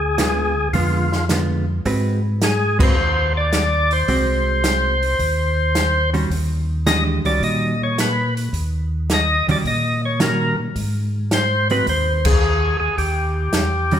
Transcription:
Already playing: D2 G#4
0.18 D3 G#3 B3 F4, snare, closed hi-hat
0.73 F2 D3 G#3 B3 F4, kick, open hi-hat
1.12 snare
1.29 D3 G#3 B3 F4, snare, closed hi-hat
1.85 G#2 G#3 C4 F#4 B4, kick, open hi-hat
2.42 G#4, snare, closed hi-hat
2.79 G#3 C4 F#4 B4 C5, kick, crash
2.96 D#2
3.37 D5
3.53 snare, closed hi-hat
3.91 C5, open hi-hat
4.08 C2 G#3 C4 F#4, kick, open hi-hat
4.64 snare, closed hi-hat
5.03 open hi-hat
5.19 D#2, kick, open hi-hat
5.75 snare, closed hi-hat
6.13 D#3 G3 C#4 F#4, open hi-hat
6.30 D#2, kick, open hi-hat
6.86 E3 G#3 D4 G4 D#5, snare, closed hi-hat
7.24 C#2 D#3 G3 C#4 F#4 D5, open hi-hat
7.42 A#2 D#5, kick, open hi-hat
7.83 C#5
7.98 B4, snare, closed hi-hat
8.37 open hi-hat
8.53 D#2, kick, open hi-hat
9.10 D#5, snare, closed hi-hat
9.47 D#2 D#3 G3 C#4 F#4 D5, open hi-hat
9.65 A#2 D#5, kick, open hi-hat
10.05 C#5
10.20 D#3 G3 C#4 F#4 A#4, snare, closed hi-hat
10.59 A#2
10.76 G#2, kick, open hi-hat
11.31 C5, snare, closed hi-hat
11.70 G#3 C4 F#4 B4, open hi-hat
11.86 D#2 C5, kick, open hi-hat
12.25 G#4, kick, crash
12.80 D#2 G#4
12.98 D#2 G4, kick, open hi-hat
13.53 E2, snare, closed hi-hat
13.91 D#3 G3 C#4 F#4, open hi-hat

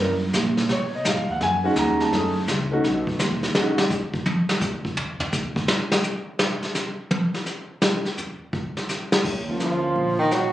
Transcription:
Already playing: G3 A#3 C#4 E4
0.00 F#2 A#4
0.33 A#2, snare, hi-hat pedal
0.57 snare
0.69 B2 C#5, brush sweep, snare
0.95 D#5
1.05 G#2, snare, hi-hat pedal
1.09 F5
1.17 F#2
1.28 D#2 F#5
1.41 F#2 G#5, brush sweep, snare
1.64 G#3 C#4 D#4 F#4 F#5
1.76 D#2 A#5, snare, hi-hat pedal
2.00 A5, snare
2.12 F#2 A3 C#4 E4 G#4, brush sweep, snare
2.48 C#2, snare, hi-hat pedal
2.72 A3 C#4 D#4 F#4
2.84 B1, brush sweep, snare
3.07 kick
3.19 D#2, snare, hi-hat pedal
3.43 snare
3.54 E2 G#3 C#4 D#4 F#4, snare
3.78 snare
3.90 kick, hi-hat pedal
4.14 kick
4.26 high tom
4.49 snare
4.61 kick, hi-hat pedal
4.85 kick
4.97 floor tom
5.20 floor tom
5.32 kick, hi-hat pedal
5.56 kick
5.68 snare
5.92 snare
6.03 hi-hat pedal
6.39 snare
6.62 snare
6.75 snare, hi-hat pedal
7.11 high tom
7.34 snare
7.46 snare, hi-hat pedal
7.82 snare
8.05 snare
8.17 floor tom, hi-hat pedal
8.53 kick
8.77 snare
8.89 snare, hi-hat pedal
9.12 snare
9.24 D#2, brush sweep, kick, crash
9.49 F3 A#3 C#4 F4
9.60 D2 F3 F4, snare, hi-hat pedal
9.95 A#1, brush sweep
10.19 D#3 D#4
10.31 F#3 F#4, snare, hi-hat pedal

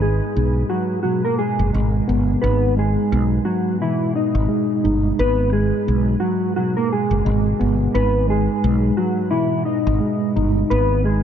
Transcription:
Already playing: G#1 G#2
0.01 G#3 G#4
0.36 B1 G#2
0.70 F#3 F#4
1.03 B2 F#3 F#4
1.25 A#3 A#4
1.39 G#3 G#4
1.59 F#1
1.73 G#1 G#3
2.08 G1 B3
2.42 G#1 G#2 B3 B4
2.77 G#3 G#4
3.12 B1 G#2
3.45 F#3 F#4
3.81 B2 E3 E4
4.15 D#4 D#5
4.35 G#1
4.48 G#3
4.84 G1 D#4
5.18 G#1 G#2 B3 B4
5.52 G#3 G#4
5.87 B1 G#2
6.20 F#3 F#4
6.56 B2 F#3 F#4
6.77 A#3 A#4
6.92 G#3 G#4
7.11 F#1
7.25 G#1 G#3
7.59 G1 B3
7.94 G#1 G#2 B3 B4
8.28 G#3 G#4
8.64 B1 G#2
8.97 F#3 F#4
9.31 B2 E3 E4
9.65 D#4 D#5
9.87 G#1
10.00 G#3
10.36 G1 D#4
10.70 G#1 G#2 B3 B4
11.04 G#3 G#4

